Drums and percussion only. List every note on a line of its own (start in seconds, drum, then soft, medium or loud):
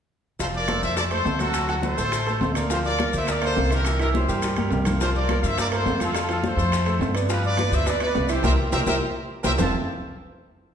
0.40 high bongo medium
0.40 high conga soft
0.40 maracas medium
0.54 high bongo soft
0.54 high conga soft
0.54 maracas soft
0.68 high bongo medium
0.68 high conga medium
0.68 high timbale medium
0.68 low timbale medium
0.68 maracas soft
0.82 high bongo soft
0.82 high conga soft
0.82 maracas medium
0.97 high bongo medium
0.97 high conga soft
0.97 high timbale medium
0.97 maracas medium
1.11 high conga soft
1.11 high timbale medium
1.11 maracas soft
1.25 high bongo soft
1.25 low bongo medium
1.25 high conga medium
1.25 low timbale medium
1.25 maracas soft
1.39 high bongo soft
1.39 high conga medium
1.39 high timbale medium
1.39 maracas medium
1.54 high bongo medium
1.54 high conga soft
1.54 high timbale medium
1.54 maracas medium
1.68 high bongo soft
1.68 high conga soft
1.68 high timbale medium
1.68 maracas soft
1.82 high bongo medium
1.82 high conga medium
1.82 low timbale medium
1.82 maracas soft
1.97 high bongo soft
1.97 high conga soft
1.97 maracas medium
2.12 high bongo medium
2.12 high conga soft
2.12 high timbale medium
2.12 maracas medium
2.27 high conga soft
2.27 high timbale medium
2.27 maracas soft
2.41 high bongo soft
2.41 low bongo medium
2.41 high conga medium
2.41 low timbale medium
2.41 maracas soft
2.55 high bongo soft
2.55 high conga soft
2.55 high timbale loud
2.55 maracas medium
2.70 high bongo medium
2.70 high conga soft
2.70 maracas medium
2.85 high bongo soft
2.85 high conga soft
2.85 maracas soft
2.99 high bongo medium
2.99 high conga medium
2.99 high timbale medium
2.99 low timbale medium
2.99 maracas soft
3.13 high bongo soft
3.13 high conga soft
3.13 maracas medium
3.27 high bongo medium
3.27 high conga soft
3.27 high timbale medium
3.27 maracas medium
3.42 high conga soft
3.42 high timbale medium
3.42 maracas soft
3.56 high bongo soft
3.56 low bongo medium
3.56 high conga medium
3.56 low timbale medium
3.56 maracas soft
3.71 high bongo soft
3.71 high timbale medium
3.71 maracas medium
3.85 high bongo medium
3.85 high conga soft
3.85 high timbale loud
3.85 maracas medium
3.99 high bongo soft
3.99 high conga soft
3.99 high timbale medium
3.99 maracas soft
4.14 high bongo medium
4.14 high conga medium
4.14 low timbale medium
4.14 maracas soft
4.29 high bongo soft
4.29 high conga soft
4.29 maracas medium
4.42 high bongo medium
4.42 high conga soft
4.42 high timbale medium
4.42 maracas medium
4.56 high conga medium
4.56 high timbale medium
4.56 maracas soft
4.70 high bongo soft
4.70 low bongo medium
4.70 low timbale medium
4.70 maracas soft
4.85 high bongo soft
4.85 low conga medium
4.85 high timbale loud
4.85 maracas medium
5.01 high bongo medium
5.01 high conga soft
5.01 maracas medium
5.15 high bongo soft
5.15 high conga soft
5.15 maracas soft
5.29 high bongo medium
5.29 high conga medium
5.29 high timbale loud
5.29 low timbale medium
5.29 maracas soft
5.43 high bongo soft
5.43 high conga soft
5.43 maracas medium
5.58 high bongo medium
5.58 high conga soft
5.58 high timbale medium
5.58 maracas medium
5.72 high conga soft
5.72 high timbale loud
5.72 maracas soft
5.86 high bongo soft
5.86 low bongo medium
5.86 high conga medium
5.86 low timbale medium
5.86 maracas soft
6.00 high bongo soft
6.00 high conga medium
6.00 high timbale medium
6.00 maracas medium
6.15 high bongo medium
6.15 high conga soft
6.15 high timbale loud
6.15 maracas medium
6.29 high bongo soft
6.29 high conga soft
6.29 high timbale medium
6.29 maracas soft
6.43 high bongo medium
6.43 high conga medium
6.43 low timbale medium
6.43 maracas soft
6.58 high bongo soft
6.58 high conga soft
6.58 maracas medium
6.72 high bongo medium
6.72 high conga soft
6.72 high timbale medium
6.72 maracas medium
6.86 high conga soft
6.86 high timbale medium
6.86 maracas soft
7.01 high bongo soft
7.01 low bongo medium
7.01 high conga medium
7.01 low timbale medium
7.01 maracas soft
7.15 high bongo soft
7.15 high conga soft
7.15 high timbale medium
7.15 maracas medium
7.29 high bongo medium
7.29 high conga soft
7.29 maracas medium
7.44 high bongo soft
7.44 high conga soft
7.44 maracas soft
7.57 high bongo medium
7.57 high conga medium
7.57 high timbale medium
7.57 low timbale medium
7.57 maracas soft
7.73 high bongo soft
7.73 high conga soft
7.73 maracas medium
7.86 high bongo medium
7.86 high conga soft
7.86 high timbale medium
7.86 maracas medium
8.00 high conga soft
8.00 high timbale medium
8.00 maracas soft
8.15 high bongo soft
8.15 low bongo medium
8.15 high conga medium
8.15 low timbale medium
8.15 maracas soft
8.29 high bongo soft
8.29 high timbale medium
8.29 maracas medium
8.43 high bongo loud
8.43 high conga loud
8.43 high timbale loud
8.43 maracas medium
8.72 high bongo loud
8.72 high conga loud
8.72 high timbale loud
8.72 maracas medium
8.87 high bongo medium
8.87 high conga medium
8.87 high timbale medium
8.87 maracas loud
9.44 high bongo medium
9.44 high conga loud
9.44 high timbale loud
9.44 maracas loud
9.58 low bongo loud
9.58 low conga medium
9.58 low timbale loud
9.58 maracas medium